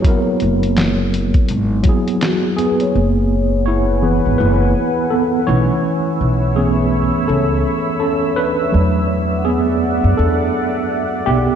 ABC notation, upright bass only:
X:1
M:4/4
L:1/16
Q:"Swing 16ths" 1/4=83
K:B
V:1 name="Upright bass" clef=bass
z2 F,,,4- F,,, z G,,,2 z6 | F,,,6- F,,, G,,, F,,,2 z4 B,,, z | z2 B,,,4- B,,, z C,,2 z6 | E,,6- E,, F,, E,,2 z4 B,,, z |]